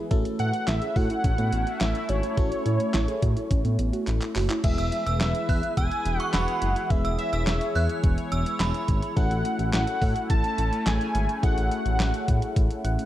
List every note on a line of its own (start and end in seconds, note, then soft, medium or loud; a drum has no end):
0.00 0.11 G#3 medium
0.00 0.11 B3 medium
0.00 0.11 G#4 medium
0.11 0.24 A1 loud
0.11 2.33 A3 medium
0.11 4.60 A3 medium
0.11 2.33 C#4 medium
0.11 4.60 C#4 medium
0.11 2.33 E4 medium
0.11 4.60 E4 loud
0.11 0.30 F#4 medium
0.11 2.33 A4 medium
0.11 kick loud
0.11 closed hi-hat medium
0.25 closed hi-hat medium
0.39 0.52 A2 loud
0.39 0.58 E4 medium
0.39 0.69 F#5 loud
0.39 closed hi-hat medium
0.54 closed hi-hat medium
0.67 0.80 A1 loud
0.67 0.77 E4 medium
0.67 0.98 E5 loud
0.67 snare loud
0.67 clap loud
0.67 closed hi-hat medium
0.82 0.91 G#4 medium
0.82 closed hi-hat medium
0.96 1.09 A2 loud
0.96 1.05 F#4 medium
0.96 1.82 F#5 loud
0.96 kick medium
0.96 open hi-hat medium
1.10 1.19 E4 medium
1.10 closed hi-hat medium
1.24 1.37 A1 loud
1.24 1.34 C#4 medium
1.24 kick loud
1.24 closed hi-hat medium
1.38 1.51 A2 loud
1.38 1.48 B3 medium
1.38 closed hi-hat soft
1.52 1.65 A1 loud
1.52 1.62 B3 medium
1.52 closed hi-hat medium
1.67 1.76 F#4 medium
1.67 closed hi-hat medium
1.81 1.94 A1 medium
1.81 1.99 E4 medium
1.81 2.11 E5 loud
1.81 snare loud
1.81 clap loud
1.81 closed hi-hat medium
1.95 closed hi-hat soft
2.09 2.22 G#1 medium
2.09 2.18 F#4 medium
2.09 4.07 C#5 loud
2.09 closed hi-hat medium
2.23 2.32 E4 medium
2.23 closed hi-hat medium
2.37 2.50 A1 loud
2.37 4.60 A3 medium
2.37 4.60 C#4 medium
2.37 4.60 E4 medium
2.37 2.56 F#4 loud
2.37 4.60 A4 medium
2.37 kick loud
2.37 closed hi-hat medium
2.52 closed hi-hat medium
2.66 2.78 A2 loud
2.66 2.84 E4 medium
2.66 closed hi-hat medium
2.80 closed hi-hat medium
2.94 3.07 A1 loud
2.94 3.03 E4 medium
2.94 snare loud
2.94 clap loud
2.94 closed hi-hat medium
3.08 3.17 G#4 medium
3.08 closed hi-hat medium
3.22 3.35 A2 loud
3.22 3.32 F#4 medium
3.22 kick medium
3.22 closed hi-hat medium
3.36 3.46 E4 medium
3.36 closed hi-hat medium
3.51 3.63 A1 loud
3.51 3.60 C#4 medium
3.51 kick loud
3.51 closed hi-hat medium
3.65 3.77 A2 loud
3.65 3.74 B3 medium
3.65 closed hi-hat soft
3.79 3.92 A1 loud
3.79 3.88 B3 medium
3.79 closed hi-hat medium
3.93 4.02 F#4 medium
3.93 closed hi-hat medium
4.07 4.20 A1 loud
4.07 4.26 E4 medium
4.07 clap medium
4.07 closed hi-hat medium
4.21 clap medium
4.21 closed hi-hat soft
4.35 4.48 F#1 loud
4.35 4.45 F#4 medium
4.35 clap medium
4.35 open hi-hat medium
4.50 4.59 E4 medium
4.50 clap medium
4.50 closed hi-hat medium
4.64 4.77 E1 loud
4.64 9.13 E3 medium
4.64 6.86 G#3 medium
4.64 6.86 B3 medium
4.64 13.05 E4 medium
4.64 6.86 E4 medium
4.64 9.13 G#4 medium
4.64 6.86 G#4 medium
4.64 6.88 B4 loud
4.64 5.17 E5 loud
4.64 kick loud
4.64 closed hi-hat medium
4.64 crash loud
4.78 4.91 E1 medium
4.78 4.87 E6 medium
4.78 closed hi-hat medium
4.92 closed hi-hat medium
5.06 5.19 E1 loud
5.06 5.23 E6 medium
5.06 closed hi-hat medium
5.20 5.33 E1 loud
5.20 5.73 E5 loud
5.20 snare loud
5.20 clap loud
5.20 closed hi-hat medium
5.35 closed hi-hat medium
5.49 5.62 E2 loud
5.49 5.58 F#6 medium
5.49 kick loud
5.49 open hi-hat medium
5.63 closed hi-hat medium
5.77 5.90 E1 loud
5.77 6.18 G#5 loud
5.77 5.86 E6 medium
5.77 kick loud
5.77 closed hi-hat medium
5.92 closed hi-hat soft
6.05 6.18 E1 loud
6.05 closed hi-hat medium
6.18 6.34 F#5 loud
6.18 6.28 C#6 medium
6.18 closed hi-hat medium
6.33 6.46 E1 loud
6.33 6.92 F#5 loud
6.33 6.74 B5 medium
6.33 snare loud
6.33 clap loud
6.33 closed hi-hat medium
6.48 closed hi-hat soft
6.62 6.75 F#1 loud
6.62 closed hi-hat medium
6.76 closed hi-hat medium
6.90 7.03 E1 loud
6.90 9.13 G#3 medium
6.90 9.13 B3 medium
6.90 9.13 E4 medium
6.90 9.13 G#4 medium
6.90 9.15 C#5 medium
6.90 7.18 E5 medium
6.90 kick loud
6.90 closed hi-hat medium
7.05 7.17 E1 loud
7.05 7.13 E6 medium
7.05 closed hi-hat medium
7.19 8.00 E5 medium
7.19 closed hi-hat medium
7.33 7.45 E1 loud
7.33 7.50 E6 medium
7.33 closed hi-hat medium
7.47 7.60 E1 loud
7.47 snare loud
7.47 clap loud
7.47 closed hi-hat medium
7.61 closed hi-hat medium
7.75 7.88 E2 loud
7.75 7.84 F#6 medium
7.75 open hi-hat medium
7.89 closed hi-hat medium
8.04 8.16 E1 loud
8.04 kick loud
8.04 closed hi-hat medium
8.18 closed hi-hat soft
8.32 8.44 E1 loud
8.32 8.49 E6 medium
8.32 closed hi-hat medium
8.46 closed hi-hat medium
8.60 8.73 E1 loud
8.60 9.00 B5 medium
8.60 snare loud
8.60 clap loud
8.60 closed hi-hat medium
8.74 closed hi-hat soft
8.88 9.01 G#1 medium
8.88 kick medium
8.88 closed hi-hat medium
9.02 closed hi-hat medium
9.16 9.29 A1 loud
9.16 11.39 A3 medium
9.16 13.05 A3 medium
9.16 11.39 C#4 medium
9.16 13.05 C#4 medium
9.16 11.39 E4 medium
9.16 11.39 A4 medium
9.16 9.69 F#5 loud
9.16 kick loud
9.16 closed hi-hat medium
9.31 9.43 A1 loud
9.31 closed hi-hat medium
9.45 closed hi-hat medium
9.59 9.72 A1 loud
9.59 closed hi-hat medium
9.73 9.86 A1 loud
9.73 10.26 F#5 loud
9.73 snare loud
9.73 clap loud
9.73 closed hi-hat medium
9.87 closed hi-hat medium
10.02 10.14 A2 loud
10.02 kick medium
10.02 open hi-hat medium
10.16 closed hi-hat medium
10.30 10.43 A1 loud
10.30 10.88 A5 loud
10.30 kick loud
10.30 closed hi-hat medium
10.44 closed hi-hat soft
10.58 10.71 A1 loud
10.58 closed hi-hat medium
10.73 closed hi-hat medium
10.86 10.99 A1 loud
10.86 11.43 G#5 loud
10.86 snare loud
10.86 clap loud
10.86 closed hi-hat medium
11.01 closed hi-hat soft
11.15 11.27 G#1 loud
11.15 closed hi-hat medium
11.29 closed hi-hat medium
11.43 11.56 A1 loud
11.43 13.05 A3 medium
11.43 13.05 C#4 medium
11.43 13.05 E4 medium
11.43 13.05 G#4 medium
11.43 11.70 F#5 loud
11.43 kick loud
11.43 closed hi-hat medium
11.57 11.70 A1 loud
11.57 closed hi-hat medium
11.71 12.53 F#5 loud
11.71 closed hi-hat medium
11.86 11.98 A1 medium
11.86 closed hi-hat medium
11.99 12.12 A1 loud
11.99 snare loud
11.99 clap loud
11.99 closed hi-hat medium
12.14 closed hi-hat medium
12.28 12.41 A2 loud
12.28 kick loud
12.28 closed hi-hat medium
12.42 closed hi-hat medium
12.56 12.69 A1 loud
12.56 kick loud
12.56 closed hi-hat medium
12.71 closed hi-hat soft
12.84 12.97 A1 loud
12.84 13.05 F#5 medium
12.84 closed hi-hat medium
12.99 closed hi-hat medium